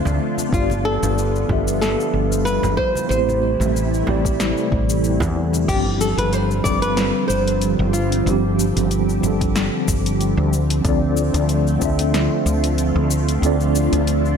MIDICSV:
0, 0, Header, 1, 6, 480
1, 0, Start_track
1, 0, Tempo, 645161
1, 391, Time_signature, 4, 2, 24, 8
1, 10691, End_track
2, 0, Start_track
2, 0, Title_t, "Nylon-string guitar"
2, 0, Program_c, 0, 24
2, 399, Note_on_c, 0, 65, 86
2, 633, Note_on_c, 0, 69, 95
2, 642, Note_off_c, 0, 65, 0
2, 1341, Note_off_c, 0, 69, 0
2, 1350, Note_on_c, 0, 69, 97
2, 1821, Note_off_c, 0, 69, 0
2, 1824, Note_on_c, 0, 71, 104
2, 2059, Note_off_c, 0, 71, 0
2, 2062, Note_on_c, 0, 72, 99
2, 2291, Note_off_c, 0, 72, 0
2, 2300, Note_on_c, 0, 72, 95
2, 3716, Note_off_c, 0, 72, 0
2, 4228, Note_on_c, 0, 67, 93
2, 4293, Note_off_c, 0, 67, 0
2, 4470, Note_on_c, 0, 69, 88
2, 4599, Note_off_c, 0, 69, 0
2, 4602, Note_on_c, 0, 71, 93
2, 4708, Note_off_c, 0, 71, 0
2, 4708, Note_on_c, 0, 72, 101
2, 4937, Note_off_c, 0, 72, 0
2, 4940, Note_on_c, 0, 74, 110
2, 5072, Note_off_c, 0, 74, 0
2, 5075, Note_on_c, 0, 71, 105
2, 5412, Note_off_c, 0, 71, 0
2, 5415, Note_on_c, 0, 72, 95
2, 5901, Note_on_c, 0, 65, 80
2, 5918, Note_off_c, 0, 72, 0
2, 6356, Note_off_c, 0, 65, 0
2, 10691, End_track
3, 0, Start_track
3, 0, Title_t, "Tine electric piano"
3, 0, Program_c, 1, 4
3, 0, Control_c, 1, 64, 127
3, 0, Note_on_c, 1, 60, 78
3, 0, Note_on_c, 1, 62, 76
3, 0, Note_on_c, 1, 65, 78
3, 0, Note_on_c, 1, 69, 77
3, 0, Note_on_c, 1, 76, 88
3, 354, Note_off_c, 1, 60, 0
3, 359, Note_off_c, 1, 62, 0
3, 366, Note_off_c, 1, 65, 0
3, 367, Note_on_c, 1, 59, 76
3, 372, Note_off_c, 1, 69, 0
3, 377, Note_off_c, 1, 76, 0
3, 381, Note_on_c, 1, 62, 68
3, 389, Note_on_c, 1, 65, 70
3, 400, Control_c, 1, 64, 0
3, 405, Note_on_c, 1, 67, 73
3, 416, Note_on_c, 1, 74, 86
3, 516, Control_c, 1, 64, 127
3, 1073, Note_off_c, 1, 59, 0
3, 1080, Note_off_c, 1, 62, 0
3, 1084, Note_off_c, 1, 65, 0
3, 1087, Note_on_c, 1, 59, 80
3, 1092, Note_off_c, 1, 67, 0
3, 1097, Note_off_c, 1, 74, 0
3, 1099, Note_on_c, 1, 62, 74
3, 1111, Note_on_c, 1, 65, 68
3, 1124, Note_on_c, 1, 67, 72
3, 1136, Note_on_c, 1, 76, 88
3, 2046, Note_off_c, 1, 59, 0
3, 2052, Note_off_c, 1, 62, 0
3, 2058, Note_off_c, 1, 65, 0
3, 2065, Note_off_c, 1, 67, 0
3, 2070, Note_off_c, 1, 76, 0
3, 2082, Control_c, 1, 64, 0
3, 2209, Control_c, 1, 64, 127
3, 2291, Note_on_c, 1, 57, 79
3, 2303, Note_on_c, 1, 60, 75
3, 2312, Note_on_c, 1, 64, 74
3, 2324, Note_on_c, 1, 67, 72
3, 2338, Note_on_c, 1, 72, 84
3, 2993, Note_off_c, 1, 57, 0
3, 3001, Note_off_c, 1, 60, 0
3, 3002, Note_on_c, 1, 57, 78
3, 3006, Note_off_c, 1, 64, 0
3, 3011, Note_off_c, 1, 67, 0
3, 3016, Note_on_c, 1, 60, 73
3, 3019, Note_off_c, 1, 72, 0
3, 3027, Note_on_c, 1, 64, 73
3, 3041, Note_on_c, 1, 67, 77
3, 3053, Note_on_c, 1, 74, 89
3, 4190, Note_off_c, 1, 57, 0
3, 4198, Note_off_c, 1, 60, 0
3, 4202, Note_on_c, 1, 53, 78
3, 4203, Note_off_c, 1, 64, 0
3, 4210, Note_off_c, 1, 67, 0
3, 4212, Note_on_c, 1, 55, 73
3, 4216, Note_off_c, 1, 74, 0
3, 4228, Note_on_c, 1, 60, 75
3, 4241, Note_on_c, 1, 62, 76
3, 4242, Control_c, 1, 64, 0
3, 4254, Note_on_c, 1, 67, 91
3, 4375, Control_c, 1, 64, 127
3, 4910, Note_off_c, 1, 53, 0
3, 4916, Note_off_c, 1, 55, 0
3, 4923, Note_off_c, 1, 60, 0
3, 4930, Note_off_c, 1, 62, 0
3, 4932, Note_on_c, 1, 53, 85
3, 4936, Note_off_c, 1, 67, 0
3, 4949, Note_on_c, 1, 55, 78
3, 4958, Note_on_c, 1, 60, 70
3, 4973, Note_on_c, 1, 62, 75
3, 4983, Note_on_c, 1, 69, 91
3, 6116, Note_off_c, 1, 53, 0
3, 6124, Note_off_c, 1, 55, 0
3, 6127, Note_on_c, 1, 53, 83
3, 6128, Note_off_c, 1, 60, 0
3, 6136, Note_off_c, 1, 62, 0
3, 6138, Note_on_c, 1, 55, 68
3, 6141, Note_off_c, 1, 69, 0
3, 6153, Note_on_c, 1, 60, 72
3, 6161, Note_on_c, 1, 62, 72
3, 6175, Note_on_c, 1, 67, 94
3, 6833, Note_off_c, 1, 53, 0
3, 6838, Note_off_c, 1, 55, 0
3, 6846, Note_off_c, 1, 60, 0
3, 6850, Note_off_c, 1, 62, 0
3, 6850, Note_on_c, 1, 53, 83
3, 6857, Note_off_c, 1, 67, 0
3, 6864, Note_on_c, 1, 55, 77
3, 6878, Note_on_c, 1, 60, 71
3, 6888, Note_on_c, 1, 62, 78
3, 6900, Note_on_c, 1, 69, 90
3, 7808, Note_off_c, 1, 53, 0
3, 7815, Note_off_c, 1, 55, 0
3, 7821, Note_off_c, 1, 60, 0
3, 7827, Note_off_c, 1, 62, 0
3, 7832, Note_off_c, 1, 69, 0
3, 7840, Control_c, 1, 64, 0
3, 7965, Control_c, 1, 64, 127
3, 8046, Note_on_c, 1, 60, 84
3, 8058, Note_on_c, 1, 62, 74
3, 8072, Note_on_c, 1, 65, 74
3, 8083, Note_on_c, 1, 69, 74
3, 8099, Note_on_c, 1, 74, 90
3, 8752, Note_off_c, 1, 60, 0
3, 8759, Note_off_c, 1, 62, 0
3, 8765, Note_off_c, 1, 65, 0
3, 8771, Note_off_c, 1, 69, 0
3, 8772, Note_on_c, 1, 60, 87
3, 8779, Note_off_c, 1, 74, 0
3, 8783, Note_on_c, 1, 62, 80
3, 8797, Note_on_c, 1, 65, 77
3, 8809, Note_on_c, 1, 69, 72
3, 8818, Note_on_c, 1, 76, 100
3, 9956, Note_off_c, 1, 60, 0
3, 9961, Note_off_c, 1, 62, 0
3, 9968, Note_off_c, 1, 65, 0
3, 9969, Note_on_c, 1, 60, 84
3, 9974, Note_off_c, 1, 69, 0
3, 9979, Note_off_c, 1, 76, 0
3, 9982, Note_on_c, 1, 62, 73
3, 9994, Note_on_c, 1, 65, 71
3, 10006, Note_on_c, 1, 69, 69
3, 10016, Note_on_c, 1, 74, 86
3, 10674, Note_off_c, 1, 60, 0
3, 10681, Note_off_c, 1, 62, 0
3, 10686, Note_off_c, 1, 65, 0
3, 10691, Note_off_c, 1, 69, 0
3, 10691, Note_off_c, 1, 74, 0
3, 10691, End_track
4, 0, Start_track
4, 0, Title_t, "String machine"
4, 0, Program_c, 2, 50
4, 0, Note_on_c, 2, 50, 69
4, 0, Note_on_c, 2, 53, 64
4, 0, Note_on_c, 2, 57, 62
4, 0, Note_on_c, 2, 62, 66
4, 0, Note_on_c, 2, 65, 79
4, 357, Note_off_c, 2, 57, 0
4, 364, Note_off_c, 2, 62, 0
4, 387, Note_on_c, 2, 55, 65
4, 391, Note_on_c, 2, 59, 68
4, 2039, Note_off_c, 2, 65, 0
4, 2040, Note_off_c, 2, 50, 0
4, 2040, Note_off_c, 2, 53, 0
4, 2055, Note_off_c, 2, 59, 0
4, 2068, Note_on_c, 2, 48, 69
4, 2069, Note_on_c, 2, 52, 62
4, 2069, Note_on_c, 2, 57, 64
4, 2070, Note_on_c, 2, 64, 78
4, 4199, Note_off_c, 2, 55, 0
4, 4208, Note_off_c, 2, 48, 0
4, 4209, Note_off_c, 2, 52, 0
4, 4209, Note_off_c, 2, 57, 0
4, 4209, Note_off_c, 2, 64, 0
4, 4227, Note_on_c, 2, 60, 68
4, 4229, Note_on_c, 2, 50, 71
4, 4229, Note_on_c, 2, 55, 62
4, 4231, Note_on_c, 2, 53, 67
4, 4232, Note_on_c, 2, 65, 81
4, 6132, Note_off_c, 2, 65, 0
4, 6149, Note_on_c, 2, 67, 76
4, 7800, Note_off_c, 2, 55, 0
4, 7800, Note_off_c, 2, 60, 0
4, 7813, Note_off_c, 2, 67, 0
4, 7826, Note_on_c, 2, 60, 65
4, 7830, Note_on_c, 2, 65, 75
4, 7831, Note_on_c, 2, 57, 64
4, 9729, Note_off_c, 2, 60, 0
4, 9739, Note_on_c, 2, 62, 66
4, 10691, Note_off_c, 2, 50, 0
4, 10691, Note_off_c, 2, 53, 0
4, 10691, Note_off_c, 2, 57, 0
4, 10691, Note_off_c, 2, 62, 0
4, 10691, Note_off_c, 2, 65, 0
4, 10691, End_track
5, 0, Start_track
5, 0, Title_t, "Fretless electric bass"
5, 0, Program_c, 3, 35
5, 44, Note_on_c, 3, 38, 78
5, 135, Note_off_c, 3, 38, 0
5, 391, Note_on_c, 3, 31, 89
5, 729, Note_off_c, 3, 31, 0
5, 765, Note_on_c, 3, 31, 84
5, 1086, Note_off_c, 3, 31, 0
5, 1110, Note_on_c, 3, 31, 81
5, 1448, Note_off_c, 3, 31, 0
5, 1589, Note_on_c, 3, 31, 80
5, 1928, Note_off_c, 3, 31, 0
5, 1959, Note_on_c, 3, 31, 79
5, 2053, Note_off_c, 3, 31, 0
5, 2309, Note_on_c, 3, 33, 96
5, 2648, Note_off_c, 3, 33, 0
5, 2677, Note_on_c, 3, 33, 90
5, 3001, Note_off_c, 3, 33, 0
5, 3031, Note_on_c, 3, 33, 81
5, 3369, Note_off_c, 3, 33, 0
5, 3512, Note_on_c, 3, 33, 84
5, 3850, Note_off_c, 3, 33, 0
5, 3880, Note_on_c, 3, 40, 105
5, 4203, Note_off_c, 3, 40, 0
5, 4228, Note_on_c, 3, 31, 99
5, 4568, Note_off_c, 3, 31, 0
5, 4595, Note_on_c, 3, 31, 92
5, 4920, Note_off_c, 3, 31, 0
5, 4949, Note_on_c, 3, 31, 82
5, 5288, Note_off_c, 3, 31, 0
5, 5428, Note_on_c, 3, 31, 85
5, 5768, Note_off_c, 3, 31, 0
5, 5797, Note_on_c, 3, 31, 96
5, 6121, Note_off_c, 3, 31, 0
5, 6147, Note_on_c, 3, 31, 101
5, 6487, Note_off_c, 3, 31, 0
5, 6521, Note_on_c, 3, 31, 90
5, 6843, Note_off_c, 3, 31, 0
5, 6869, Note_on_c, 3, 31, 87
5, 7208, Note_off_c, 3, 31, 0
5, 7350, Note_on_c, 3, 31, 88
5, 7689, Note_off_c, 3, 31, 0
5, 7718, Note_on_c, 3, 38, 101
5, 8042, Note_off_c, 3, 38, 0
5, 8069, Note_on_c, 3, 38, 97
5, 8408, Note_off_c, 3, 38, 0
5, 8438, Note_on_c, 3, 38, 99
5, 8762, Note_off_c, 3, 38, 0
5, 8791, Note_on_c, 3, 38, 90
5, 9129, Note_off_c, 3, 38, 0
5, 9269, Note_on_c, 3, 38, 86
5, 9608, Note_off_c, 3, 38, 0
5, 9639, Note_on_c, 3, 38, 96
5, 9963, Note_off_c, 3, 38, 0
5, 9985, Note_on_c, 3, 38, 92
5, 10326, Note_off_c, 3, 38, 0
5, 10361, Note_on_c, 3, 38, 94
5, 10683, Note_off_c, 3, 38, 0
5, 10691, End_track
6, 0, Start_track
6, 0, Title_t, "Drums"
6, 40, Note_on_c, 9, 64, 74
6, 49, Note_on_c, 9, 69, 32
6, 114, Note_off_c, 9, 64, 0
6, 124, Note_off_c, 9, 69, 0
6, 282, Note_on_c, 9, 63, 51
6, 287, Note_on_c, 9, 69, 62
6, 356, Note_off_c, 9, 63, 0
6, 361, Note_off_c, 9, 69, 0
6, 391, Note_on_c, 9, 36, 107
6, 400, Note_on_c, 9, 69, 45
6, 465, Note_off_c, 9, 36, 0
6, 474, Note_off_c, 9, 69, 0
6, 520, Note_on_c, 9, 63, 61
6, 530, Note_on_c, 9, 69, 29
6, 594, Note_off_c, 9, 63, 0
6, 604, Note_off_c, 9, 69, 0
6, 766, Note_on_c, 9, 64, 74
6, 767, Note_on_c, 9, 69, 64
6, 841, Note_off_c, 9, 64, 0
6, 841, Note_off_c, 9, 69, 0
6, 880, Note_on_c, 9, 69, 50
6, 954, Note_off_c, 9, 69, 0
6, 1009, Note_on_c, 9, 69, 30
6, 1083, Note_off_c, 9, 69, 0
6, 1111, Note_on_c, 9, 36, 88
6, 1111, Note_on_c, 9, 64, 70
6, 1185, Note_off_c, 9, 36, 0
6, 1185, Note_off_c, 9, 64, 0
6, 1247, Note_on_c, 9, 69, 56
6, 1322, Note_off_c, 9, 69, 0
6, 1355, Note_on_c, 9, 38, 72
6, 1357, Note_on_c, 9, 69, 53
6, 1430, Note_off_c, 9, 38, 0
6, 1431, Note_off_c, 9, 69, 0
6, 1489, Note_on_c, 9, 69, 30
6, 1564, Note_off_c, 9, 69, 0
6, 1727, Note_on_c, 9, 69, 62
6, 1801, Note_off_c, 9, 69, 0
6, 1836, Note_on_c, 9, 69, 53
6, 1910, Note_off_c, 9, 69, 0
6, 1958, Note_on_c, 9, 64, 83
6, 1963, Note_on_c, 9, 69, 32
6, 2032, Note_off_c, 9, 64, 0
6, 2038, Note_off_c, 9, 69, 0
6, 2072, Note_on_c, 9, 36, 54
6, 2146, Note_off_c, 9, 36, 0
6, 2198, Note_on_c, 9, 63, 54
6, 2208, Note_on_c, 9, 69, 64
6, 2272, Note_off_c, 9, 63, 0
6, 2282, Note_off_c, 9, 69, 0
6, 2317, Note_on_c, 9, 69, 48
6, 2392, Note_off_c, 9, 69, 0
6, 2447, Note_on_c, 9, 63, 54
6, 2450, Note_on_c, 9, 69, 30
6, 2521, Note_off_c, 9, 63, 0
6, 2525, Note_off_c, 9, 69, 0
6, 2684, Note_on_c, 9, 64, 67
6, 2688, Note_on_c, 9, 69, 64
6, 2758, Note_off_c, 9, 64, 0
6, 2763, Note_off_c, 9, 69, 0
6, 2801, Note_on_c, 9, 69, 51
6, 2875, Note_off_c, 9, 69, 0
6, 2931, Note_on_c, 9, 69, 30
6, 3005, Note_off_c, 9, 69, 0
6, 3028, Note_on_c, 9, 64, 78
6, 3102, Note_off_c, 9, 64, 0
6, 3161, Note_on_c, 9, 36, 94
6, 3168, Note_on_c, 9, 69, 62
6, 3236, Note_off_c, 9, 36, 0
6, 3243, Note_off_c, 9, 69, 0
6, 3273, Note_on_c, 9, 38, 73
6, 3274, Note_on_c, 9, 69, 52
6, 3347, Note_off_c, 9, 38, 0
6, 3349, Note_off_c, 9, 69, 0
6, 3402, Note_on_c, 9, 69, 29
6, 3477, Note_off_c, 9, 69, 0
6, 3511, Note_on_c, 9, 36, 89
6, 3586, Note_off_c, 9, 36, 0
6, 3642, Note_on_c, 9, 69, 64
6, 3716, Note_off_c, 9, 69, 0
6, 3751, Note_on_c, 9, 69, 53
6, 3825, Note_off_c, 9, 69, 0
6, 3871, Note_on_c, 9, 64, 91
6, 3881, Note_on_c, 9, 36, 54
6, 3883, Note_on_c, 9, 69, 32
6, 3945, Note_off_c, 9, 64, 0
6, 3955, Note_off_c, 9, 36, 0
6, 3957, Note_off_c, 9, 69, 0
6, 4116, Note_on_c, 9, 63, 53
6, 4123, Note_on_c, 9, 69, 64
6, 4190, Note_off_c, 9, 63, 0
6, 4197, Note_off_c, 9, 69, 0
6, 4229, Note_on_c, 9, 36, 125
6, 4232, Note_on_c, 9, 42, 42
6, 4232, Note_on_c, 9, 49, 94
6, 4234, Note_on_c, 9, 69, 40
6, 4304, Note_off_c, 9, 36, 0
6, 4307, Note_off_c, 9, 42, 0
6, 4307, Note_off_c, 9, 49, 0
6, 4308, Note_off_c, 9, 69, 0
6, 4471, Note_on_c, 9, 69, 80
6, 4545, Note_off_c, 9, 69, 0
6, 4601, Note_on_c, 9, 42, 59
6, 4603, Note_on_c, 9, 69, 33
6, 4676, Note_off_c, 9, 42, 0
6, 4677, Note_off_c, 9, 69, 0
6, 4707, Note_on_c, 9, 42, 46
6, 4709, Note_on_c, 9, 69, 41
6, 4781, Note_off_c, 9, 42, 0
6, 4783, Note_off_c, 9, 69, 0
6, 4843, Note_on_c, 9, 69, 30
6, 4917, Note_off_c, 9, 69, 0
6, 4948, Note_on_c, 9, 36, 97
6, 4951, Note_on_c, 9, 69, 78
6, 5022, Note_off_c, 9, 36, 0
6, 5025, Note_off_c, 9, 69, 0
6, 5076, Note_on_c, 9, 42, 54
6, 5078, Note_on_c, 9, 69, 32
6, 5151, Note_off_c, 9, 42, 0
6, 5152, Note_off_c, 9, 69, 0
6, 5187, Note_on_c, 9, 38, 82
6, 5187, Note_on_c, 9, 42, 46
6, 5188, Note_on_c, 9, 69, 45
6, 5261, Note_off_c, 9, 38, 0
6, 5261, Note_off_c, 9, 42, 0
6, 5263, Note_off_c, 9, 69, 0
6, 5430, Note_on_c, 9, 69, 78
6, 5505, Note_off_c, 9, 69, 0
6, 5562, Note_on_c, 9, 42, 61
6, 5563, Note_on_c, 9, 69, 36
6, 5636, Note_off_c, 9, 42, 0
6, 5638, Note_off_c, 9, 69, 0
6, 5665, Note_on_c, 9, 42, 48
6, 5667, Note_on_c, 9, 69, 46
6, 5740, Note_off_c, 9, 42, 0
6, 5741, Note_off_c, 9, 69, 0
6, 5907, Note_on_c, 9, 69, 83
6, 5981, Note_off_c, 9, 69, 0
6, 6043, Note_on_c, 9, 42, 59
6, 6044, Note_on_c, 9, 69, 33
6, 6117, Note_off_c, 9, 42, 0
6, 6119, Note_off_c, 9, 69, 0
6, 6153, Note_on_c, 9, 42, 42
6, 6155, Note_on_c, 9, 69, 41
6, 6228, Note_off_c, 9, 42, 0
6, 6229, Note_off_c, 9, 69, 0
6, 6394, Note_on_c, 9, 69, 80
6, 6468, Note_off_c, 9, 69, 0
6, 6523, Note_on_c, 9, 42, 59
6, 6525, Note_on_c, 9, 69, 35
6, 6597, Note_off_c, 9, 42, 0
6, 6599, Note_off_c, 9, 69, 0
6, 6629, Note_on_c, 9, 42, 45
6, 6630, Note_on_c, 9, 69, 46
6, 6703, Note_off_c, 9, 42, 0
6, 6705, Note_off_c, 9, 69, 0
6, 6765, Note_on_c, 9, 69, 32
6, 6839, Note_off_c, 9, 69, 0
6, 6872, Note_on_c, 9, 69, 84
6, 6946, Note_off_c, 9, 69, 0
6, 7001, Note_on_c, 9, 36, 107
6, 7004, Note_on_c, 9, 42, 50
6, 7005, Note_on_c, 9, 69, 30
6, 7076, Note_off_c, 9, 36, 0
6, 7078, Note_off_c, 9, 42, 0
6, 7080, Note_off_c, 9, 69, 0
6, 7110, Note_on_c, 9, 38, 76
6, 7110, Note_on_c, 9, 42, 45
6, 7111, Note_on_c, 9, 69, 49
6, 7184, Note_off_c, 9, 38, 0
6, 7184, Note_off_c, 9, 42, 0
6, 7186, Note_off_c, 9, 69, 0
6, 7351, Note_on_c, 9, 36, 98
6, 7352, Note_on_c, 9, 69, 88
6, 7425, Note_off_c, 9, 36, 0
6, 7426, Note_off_c, 9, 69, 0
6, 7486, Note_on_c, 9, 42, 59
6, 7488, Note_on_c, 9, 69, 36
6, 7561, Note_off_c, 9, 42, 0
6, 7562, Note_off_c, 9, 69, 0
6, 7593, Note_on_c, 9, 42, 48
6, 7595, Note_on_c, 9, 69, 49
6, 7668, Note_off_c, 9, 42, 0
6, 7669, Note_off_c, 9, 69, 0
6, 7835, Note_on_c, 9, 69, 85
6, 7909, Note_off_c, 9, 69, 0
6, 7963, Note_on_c, 9, 42, 58
6, 7965, Note_on_c, 9, 69, 36
6, 8038, Note_off_c, 9, 42, 0
6, 8039, Note_off_c, 9, 69, 0
6, 8069, Note_on_c, 9, 42, 39
6, 8071, Note_on_c, 9, 36, 127
6, 8071, Note_on_c, 9, 69, 41
6, 8144, Note_off_c, 9, 42, 0
6, 8145, Note_off_c, 9, 36, 0
6, 8145, Note_off_c, 9, 69, 0
6, 8309, Note_on_c, 9, 69, 86
6, 8383, Note_off_c, 9, 69, 0
6, 8439, Note_on_c, 9, 42, 57
6, 8441, Note_on_c, 9, 69, 38
6, 8514, Note_off_c, 9, 42, 0
6, 8516, Note_off_c, 9, 69, 0
6, 8549, Note_on_c, 9, 42, 43
6, 8550, Note_on_c, 9, 69, 50
6, 8623, Note_off_c, 9, 42, 0
6, 8625, Note_off_c, 9, 69, 0
6, 8684, Note_on_c, 9, 69, 33
6, 8758, Note_off_c, 9, 69, 0
6, 8790, Note_on_c, 9, 69, 85
6, 8791, Note_on_c, 9, 36, 104
6, 8864, Note_off_c, 9, 69, 0
6, 8865, Note_off_c, 9, 36, 0
6, 8920, Note_on_c, 9, 42, 54
6, 8922, Note_on_c, 9, 69, 35
6, 8994, Note_off_c, 9, 42, 0
6, 8996, Note_off_c, 9, 69, 0
6, 9033, Note_on_c, 9, 38, 79
6, 9033, Note_on_c, 9, 42, 46
6, 9035, Note_on_c, 9, 69, 45
6, 9107, Note_off_c, 9, 38, 0
6, 9107, Note_off_c, 9, 42, 0
6, 9109, Note_off_c, 9, 69, 0
6, 9273, Note_on_c, 9, 69, 82
6, 9348, Note_off_c, 9, 69, 0
6, 9402, Note_on_c, 9, 42, 57
6, 9404, Note_on_c, 9, 69, 35
6, 9476, Note_off_c, 9, 42, 0
6, 9478, Note_off_c, 9, 69, 0
6, 9509, Note_on_c, 9, 42, 45
6, 9511, Note_on_c, 9, 69, 50
6, 9584, Note_off_c, 9, 42, 0
6, 9585, Note_off_c, 9, 69, 0
6, 9751, Note_on_c, 9, 69, 83
6, 9825, Note_off_c, 9, 69, 0
6, 9884, Note_on_c, 9, 42, 56
6, 9886, Note_on_c, 9, 69, 36
6, 9958, Note_off_c, 9, 42, 0
6, 9960, Note_off_c, 9, 69, 0
6, 9994, Note_on_c, 9, 42, 38
6, 9995, Note_on_c, 9, 69, 42
6, 10068, Note_off_c, 9, 42, 0
6, 10070, Note_off_c, 9, 69, 0
6, 10122, Note_on_c, 9, 69, 33
6, 10197, Note_off_c, 9, 69, 0
6, 10232, Note_on_c, 9, 69, 76
6, 10307, Note_off_c, 9, 69, 0
6, 10362, Note_on_c, 9, 42, 54
6, 10363, Note_on_c, 9, 69, 34
6, 10436, Note_off_c, 9, 42, 0
6, 10438, Note_off_c, 9, 69, 0
6, 10471, Note_on_c, 9, 42, 45
6, 10473, Note_on_c, 9, 69, 46
6, 10545, Note_off_c, 9, 42, 0
6, 10547, Note_off_c, 9, 69, 0
6, 10605, Note_on_c, 9, 69, 30
6, 10680, Note_off_c, 9, 69, 0
6, 10691, End_track
0, 0, End_of_file